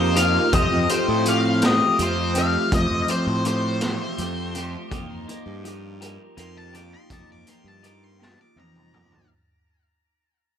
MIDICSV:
0, 0, Header, 1, 6, 480
1, 0, Start_track
1, 0, Tempo, 730816
1, 351, Time_signature, 6, 3, 24, 8
1, 6950, End_track
2, 0, Start_track
2, 0, Title_t, "Lead electric guitar"
2, 0, Program_c, 0, 29
2, 0, Note_on_c, 0, 72, 79
2, 104, Note_off_c, 0, 72, 0
2, 111, Note_on_c, 0, 77, 69
2, 343, Note_off_c, 0, 77, 0
2, 355, Note_on_c, 0, 75, 81
2, 585, Note_off_c, 0, 75, 0
2, 591, Note_on_c, 0, 72, 77
2, 823, Note_off_c, 0, 72, 0
2, 842, Note_on_c, 0, 77, 63
2, 1069, Note_off_c, 0, 77, 0
2, 1085, Note_on_c, 0, 75, 75
2, 1310, Note_off_c, 0, 75, 0
2, 1329, Note_on_c, 0, 72, 84
2, 1552, Note_off_c, 0, 72, 0
2, 1565, Note_on_c, 0, 77, 74
2, 1789, Note_off_c, 0, 77, 0
2, 1800, Note_on_c, 0, 75, 83
2, 2027, Note_off_c, 0, 75, 0
2, 2041, Note_on_c, 0, 72, 70
2, 2267, Note_off_c, 0, 72, 0
2, 2281, Note_on_c, 0, 72, 78
2, 3112, Note_off_c, 0, 72, 0
2, 4199, Note_on_c, 0, 84, 85
2, 4309, Note_off_c, 0, 84, 0
2, 4317, Note_on_c, 0, 81, 72
2, 4428, Note_off_c, 0, 81, 0
2, 4435, Note_on_c, 0, 86, 71
2, 4547, Note_off_c, 0, 86, 0
2, 4559, Note_on_c, 0, 84, 77
2, 4669, Note_off_c, 0, 84, 0
2, 4679, Note_on_c, 0, 81, 77
2, 4789, Note_off_c, 0, 81, 0
2, 4807, Note_on_c, 0, 86, 74
2, 4916, Note_off_c, 0, 86, 0
2, 4916, Note_on_c, 0, 84, 68
2, 5028, Note_off_c, 0, 84, 0
2, 5043, Note_on_c, 0, 81, 72
2, 5152, Note_off_c, 0, 81, 0
2, 5162, Note_on_c, 0, 86, 69
2, 5280, Note_off_c, 0, 86, 0
2, 5280, Note_on_c, 0, 84, 67
2, 5407, Note_off_c, 0, 84, 0
2, 5407, Note_on_c, 0, 81, 66
2, 5514, Note_off_c, 0, 81, 0
2, 5523, Note_on_c, 0, 86, 73
2, 5632, Note_off_c, 0, 86, 0
2, 5645, Note_on_c, 0, 82, 82
2, 6102, Note_off_c, 0, 82, 0
2, 6950, End_track
3, 0, Start_track
3, 0, Title_t, "Tonewheel organ"
3, 0, Program_c, 1, 16
3, 0, Note_on_c, 1, 58, 59
3, 0, Note_on_c, 1, 63, 55
3, 0, Note_on_c, 1, 65, 56
3, 0, Note_on_c, 1, 67, 64
3, 324, Note_off_c, 1, 67, 0
3, 325, Note_off_c, 1, 65, 0
3, 327, Note_off_c, 1, 58, 0
3, 329, Note_off_c, 1, 63, 0
3, 6950, End_track
4, 0, Start_track
4, 0, Title_t, "Clean electric guitar"
4, 0, Program_c, 2, 27
4, 0, Note_on_c, 2, 53, 60
4, 0, Note_on_c, 2, 58, 66
4, 0, Note_on_c, 2, 63, 72
4, 0, Note_on_c, 2, 67, 67
4, 95, Note_off_c, 2, 67, 0
4, 100, Note_off_c, 2, 63, 0
4, 102, Note_off_c, 2, 58, 0
4, 103, Note_on_c, 2, 67, 69
4, 104, Note_off_c, 2, 53, 0
4, 108, Note_on_c, 2, 63, 59
4, 110, Note_on_c, 2, 58, 60
4, 112, Note_on_c, 2, 53, 59
4, 336, Note_off_c, 2, 53, 0
4, 343, Note_off_c, 2, 58, 0
4, 343, Note_off_c, 2, 67, 0
4, 344, Note_on_c, 2, 53, 65
4, 345, Note_off_c, 2, 63, 0
4, 345, Note_on_c, 2, 57, 69
4, 347, Note_on_c, 2, 60, 74
4, 351, Note_on_c, 2, 67, 73
4, 580, Note_off_c, 2, 67, 0
4, 583, Note_off_c, 2, 60, 0
4, 584, Note_off_c, 2, 57, 0
4, 587, Note_off_c, 2, 53, 0
4, 588, Note_on_c, 2, 67, 62
4, 590, Note_on_c, 2, 60, 57
4, 592, Note_on_c, 2, 57, 55
4, 595, Note_on_c, 2, 53, 52
4, 818, Note_off_c, 2, 53, 0
4, 823, Note_off_c, 2, 57, 0
4, 825, Note_off_c, 2, 60, 0
4, 825, Note_off_c, 2, 67, 0
4, 826, Note_on_c, 2, 53, 66
4, 830, Note_on_c, 2, 57, 59
4, 832, Note_on_c, 2, 60, 61
4, 833, Note_on_c, 2, 67, 62
4, 1055, Note_off_c, 2, 67, 0
4, 1057, Note_off_c, 2, 60, 0
4, 1060, Note_off_c, 2, 57, 0
4, 1063, Note_off_c, 2, 53, 0
4, 1063, Note_on_c, 2, 67, 69
4, 1065, Note_on_c, 2, 60, 62
4, 1068, Note_on_c, 2, 57, 63
4, 1071, Note_on_c, 2, 53, 57
4, 1298, Note_off_c, 2, 53, 0
4, 1303, Note_off_c, 2, 57, 0
4, 1303, Note_off_c, 2, 60, 0
4, 1306, Note_off_c, 2, 67, 0
4, 1306, Note_on_c, 2, 53, 65
4, 1310, Note_on_c, 2, 57, 63
4, 1311, Note_on_c, 2, 60, 67
4, 1313, Note_on_c, 2, 67, 67
4, 1536, Note_off_c, 2, 67, 0
4, 1537, Note_off_c, 2, 60, 0
4, 1543, Note_off_c, 2, 57, 0
4, 1544, Note_on_c, 2, 67, 64
4, 1545, Note_off_c, 2, 53, 0
4, 1545, Note_on_c, 2, 60, 63
4, 1551, Note_on_c, 2, 57, 60
4, 1553, Note_on_c, 2, 53, 57
4, 1777, Note_off_c, 2, 53, 0
4, 1780, Note_off_c, 2, 57, 0
4, 1782, Note_off_c, 2, 60, 0
4, 1783, Note_off_c, 2, 67, 0
4, 1785, Note_on_c, 2, 53, 67
4, 1788, Note_on_c, 2, 57, 75
4, 1789, Note_on_c, 2, 60, 69
4, 1791, Note_on_c, 2, 67, 79
4, 2017, Note_off_c, 2, 67, 0
4, 2021, Note_off_c, 2, 60, 0
4, 2024, Note_off_c, 2, 53, 0
4, 2024, Note_off_c, 2, 57, 0
4, 2025, Note_on_c, 2, 67, 59
4, 2029, Note_on_c, 2, 60, 61
4, 2032, Note_on_c, 2, 53, 51
4, 2032, Note_on_c, 2, 57, 54
4, 2261, Note_off_c, 2, 53, 0
4, 2266, Note_off_c, 2, 57, 0
4, 2266, Note_off_c, 2, 60, 0
4, 2266, Note_off_c, 2, 67, 0
4, 2269, Note_on_c, 2, 53, 58
4, 2274, Note_on_c, 2, 57, 64
4, 2274, Note_on_c, 2, 60, 62
4, 2275, Note_on_c, 2, 67, 62
4, 2500, Note_off_c, 2, 67, 0
4, 2505, Note_off_c, 2, 60, 0
4, 2508, Note_off_c, 2, 53, 0
4, 2508, Note_off_c, 2, 57, 0
4, 2508, Note_on_c, 2, 67, 71
4, 2513, Note_on_c, 2, 60, 61
4, 2515, Note_on_c, 2, 53, 54
4, 2516, Note_on_c, 2, 57, 62
4, 2738, Note_off_c, 2, 53, 0
4, 2743, Note_off_c, 2, 57, 0
4, 2743, Note_off_c, 2, 60, 0
4, 2745, Note_on_c, 2, 53, 65
4, 2747, Note_off_c, 2, 67, 0
4, 2751, Note_on_c, 2, 57, 60
4, 2751, Note_on_c, 2, 60, 67
4, 2754, Note_on_c, 2, 67, 75
4, 2978, Note_off_c, 2, 67, 0
4, 2981, Note_off_c, 2, 60, 0
4, 2982, Note_off_c, 2, 57, 0
4, 2986, Note_off_c, 2, 53, 0
4, 2986, Note_on_c, 2, 67, 70
4, 2989, Note_on_c, 2, 60, 61
4, 2990, Note_on_c, 2, 57, 61
4, 2995, Note_on_c, 2, 53, 54
4, 3217, Note_off_c, 2, 53, 0
4, 3222, Note_off_c, 2, 57, 0
4, 3223, Note_off_c, 2, 67, 0
4, 3225, Note_on_c, 2, 53, 67
4, 3225, Note_on_c, 2, 58, 73
4, 3226, Note_off_c, 2, 60, 0
4, 3229, Note_on_c, 2, 63, 72
4, 3231, Note_on_c, 2, 67, 73
4, 3458, Note_off_c, 2, 67, 0
4, 3459, Note_off_c, 2, 63, 0
4, 3462, Note_off_c, 2, 58, 0
4, 3466, Note_off_c, 2, 53, 0
4, 3466, Note_on_c, 2, 67, 64
4, 3467, Note_on_c, 2, 63, 59
4, 3470, Note_on_c, 2, 58, 53
4, 3474, Note_on_c, 2, 53, 56
4, 3696, Note_off_c, 2, 53, 0
4, 3701, Note_off_c, 2, 58, 0
4, 3701, Note_off_c, 2, 63, 0
4, 3704, Note_off_c, 2, 67, 0
4, 3704, Note_on_c, 2, 53, 65
4, 3708, Note_on_c, 2, 63, 62
4, 3709, Note_on_c, 2, 58, 65
4, 3712, Note_on_c, 2, 67, 73
4, 3936, Note_off_c, 2, 67, 0
4, 3939, Note_off_c, 2, 63, 0
4, 3941, Note_off_c, 2, 58, 0
4, 3942, Note_off_c, 2, 53, 0
4, 3944, Note_on_c, 2, 67, 72
4, 3946, Note_on_c, 2, 63, 66
4, 3949, Note_on_c, 2, 58, 62
4, 3950, Note_on_c, 2, 53, 55
4, 4170, Note_off_c, 2, 53, 0
4, 4176, Note_off_c, 2, 58, 0
4, 4177, Note_off_c, 2, 63, 0
4, 4178, Note_on_c, 2, 53, 57
4, 4182, Note_off_c, 2, 67, 0
4, 4184, Note_on_c, 2, 58, 62
4, 4185, Note_on_c, 2, 63, 63
4, 4190, Note_on_c, 2, 67, 69
4, 4412, Note_off_c, 2, 67, 0
4, 4415, Note_off_c, 2, 63, 0
4, 4416, Note_off_c, 2, 58, 0
4, 4419, Note_off_c, 2, 53, 0
4, 4419, Note_on_c, 2, 67, 70
4, 4423, Note_on_c, 2, 63, 63
4, 4424, Note_on_c, 2, 58, 60
4, 4427, Note_on_c, 2, 53, 53
4, 4654, Note_off_c, 2, 53, 0
4, 4656, Note_off_c, 2, 58, 0
4, 4659, Note_off_c, 2, 63, 0
4, 4662, Note_off_c, 2, 67, 0
4, 4662, Note_on_c, 2, 53, 68
4, 4664, Note_on_c, 2, 58, 74
4, 4667, Note_on_c, 2, 63, 73
4, 4669, Note_on_c, 2, 67, 76
4, 4893, Note_off_c, 2, 67, 0
4, 4898, Note_off_c, 2, 63, 0
4, 4899, Note_off_c, 2, 58, 0
4, 4901, Note_on_c, 2, 67, 59
4, 4903, Note_off_c, 2, 53, 0
4, 4906, Note_on_c, 2, 63, 56
4, 4907, Note_on_c, 2, 58, 54
4, 4910, Note_on_c, 2, 53, 50
4, 5132, Note_off_c, 2, 53, 0
4, 5134, Note_off_c, 2, 58, 0
4, 5136, Note_off_c, 2, 63, 0
4, 5139, Note_off_c, 2, 67, 0
4, 5140, Note_on_c, 2, 53, 59
4, 5142, Note_on_c, 2, 58, 60
4, 5144, Note_on_c, 2, 63, 59
4, 5147, Note_on_c, 2, 67, 61
4, 5374, Note_off_c, 2, 67, 0
4, 5378, Note_off_c, 2, 63, 0
4, 5380, Note_off_c, 2, 58, 0
4, 5382, Note_on_c, 2, 67, 66
4, 5383, Note_off_c, 2, 53, 0
4, 5386, Note_on_c, 2, 63, 62
4, 5388, Note_on_c, 2, 58, 57
4, 5391, Note_on_c, 2, 53, 54
4, 5613, Note_off_c, 2, 53, 0
4, 5618, Note_off_c, 2, 58, 0
4, 5620, Note_off_c, 2, 63, 0
4, 5621, Note_on_c, 2, 53, 54
4, 5622, Note_off_c, 2, 67, 0
4, 5626, Note_on_c, 2, 58, 56
4, 5628, Note_on_c, 2, 63, 61
4, 5630, Note_on_c, 2, 67, 62
4, 5857, Note_off_c, 2, 67, 0
4, 5861, Note_off_c, 2, 63, 0
4, 5862, Note_off_c, 2, 58, 0
4, 5864, Note_off_c, 2, 53, 0
4, 5865, Note_on_c, 2, 67, 62
4, 5869, Note_on_c, 2, 58, 57
4, 5869, Note_on_c, 2, 63, 59
4, 5874, Note_on_c, 2, 53, 50
4, 6106, Note_off_c, 2, 67, 0
4, 6108, Note_off_c, 2, 63, 0
4, 6109, Note_off_c, 2, 58, 0
4, 6111, Note_off_c, 2, 53, 0
4, 6950, End_track
5, 0, Start_track
5, 0, Title_t, "Fingered electric bass"
5, 0, Program_c, 3, 33
5, 0, Note_on_c, 3, 41, 81
5, 243, Note_off_c, 3, 41, 0
5, 345, Note_on_c, 3, 41, 79
5, 440, Note_off_c, 3, 41, 0
5, 469, Note_on_c, 3, 41, 72
5, 562, Note_off_c, 3, 41, 0
5, 710, Note_on_c, 3, 45, 76
5, 1175, Note_off_c, 3, 45, 0
5, 1306, Note_on_c, 3, 41, 74
5, 1679, Note_off_c, 3, 41, 0
5, 1786, Note_on_c, 3, 41, 82
5, 1880, Note_off_c, 3, 41, 0
5, 1905, Note_on_c, 3, 41, 66
5, 1999, Note_off_c, 3, 41, 0
5, 2146, Note_on_c, 3, 45, 82
5, 2612, Note_off_c, 3, 45, 0
5, 2748, Note_on_c, 3, 41, 76
5, 3120, Note_off_c, 3, 41, 0
5, 3227, Note_on_c, 3, 41, 77
5, 3320, Note_off_c, 3, 41, 0
5, 3348, Note_on_c, 3, 41, 68
5, 3441, Note_off_c, 3, 41, 0
5, 3585, Note_on_c, 3, 43, 79
5, 4051, Note_off_c, 3, 43, 0
5, 4186, Note_on_c, 3, 41, 77
5, 4559, Note_off_c, 3, 41, 0
5, 4663, Note_on_c, 3, 41, 71
5, 4758, Note_off_c, 3, 41, 0
5, 4786, Note_on_c, 3, 41, 62
5, 4879, Note_off_c, 3, 41, 0
5, 5020, Note_on_c, 3, 43, 72
5, 5489, Note_off_c, 3, 43, 0
5, 5623, Note_on_c, 3, 41, 72
5, 5998, Note_off_c, 3, 41, 0
5, 6950, End_track
6, 0, Start_track
6, 0, Title_t, "Drums"
6, 107, Note_on_c, 9, 42, 57
6, 173, Note_off_c, 9, 42, 0
6, 347, Note_on_c, 9, 42, 73
6, 348, Note_on_c, 9, 36, 88
6, 412, Note_off_c, 9, 42, 0
6, 414, Note_off_c, 9, 36, 0
6, 587, Note_on_c, 9, 42, 55
6, 652, Note_off_c, 9, 42, 0
6, 824, Note_on_c, 9, 42, 52
6, 890, Note_off_c, 9, 42, 0
6, 1062, Note_on_c, 9, 42, 65
6, 1070, Note_on_c, 9, 38, 88
6, 1128, Note_off_c, 9, 42, 0
6, 1136, Note_off_c, 9, 38, 0
6, 1307, Note_on_c, 9, 42, 51
6, 1372, Note_off_c, 9, 42, 0
6, 1542, Note_on_c, 9, 42, 52
6, 1608, Note_off_c, 9, 42, 0
6, 1786, Note_on_c, 9, 42, 66
6, 1787, Note_on_c, 9, 36, 91
6, 1852, Note_off_c, 9, 42, 0
6, 1853, Note_off_c, 9, 36, 0
6, 2024, Note_on_c, 9, 42, 50
6, 2089, Note_off_c, 9, 42, 0
6, 2265, Note_on_c, 9, 42, 49
6, 2331, Note_off_c, 9, 42, 0
6, 2502, Note_on_c, 9, 42, 64
6, 2510, Note_on_c, 9, 38, 82
6, 2567, Note_off_c, 9, 42, 0
6, 2575, Note_off_c, 9, 38, 0
6, 2747, Note_on_c, 9, 42, 50
6, 2812, Note_off_c, 9, 42, 0
6, 2987, Note_on_c, 9, 42, 52
6, 3053, Note_off_c, 9, 42, 0
6, 3228, Note_on_c, 9, 36, 91
6, 3229, Note_on_c, 9, 42, 65
6, 3294, Note_off_c, 9, 36, 0
6, 3295, Note_off_c, 9, 42, 0
6, 3474, Note_on_c, 9, 42, 52
6, 3539, Note_off_c, 9, 42, 0
6, 3711, Note_on_c, 9, 42, 52
6, 3776, Note_off_c, 9, 42, 0
6, 3952, Note_on_c, 9, 42, 70
6, 4017, Note_off_c, 9, 42, 0
6, 4187, Note_on_c, 9, 42, 51
6, 4252, Note_off_c, 9, 42, 0
6, 4430, Note_on_c, 9, 42, 53
6, 4496, Note_off_c, 9, 42, 0
6, 4665, Note_on_c, 9, 36, 86
6, 4665, Note_on_c, 9, 42, 70
6, 4731, Note_off_c, 9, 36, 0
6, 4731, Note_off_c, 9, 42, 0
6, 4905, Note_on_c, 9, 42, 53
6, 4970, Note_off_c, 9, 42, 0
6, 5148, Note_on_c, 9, 42, 51
6, 5213, Note_off_c, 9, 42, 0
6, 5398, Note_on_c, 9, 38, 41
6, 5463, Note_off_c, 9, 38, 0
6, 5628, Note_on_c, 9, 48, 53
6, 5694, Note_off_c, 9, 48, 0
6, 5753, Note_on_c, 9, 47, 51
6, 5819, Note_off_c, 9, 47, 0
6, 5872, Note_on_c, 9, 45, 70
6, 5938, Note_off_c, 9, 45, 0
6, 5989, Note_on_c, 9, 43, 61
6, 6055, Note_off_c, 9, 43, 0
6, 6950, End_track
0, 0, End_of_file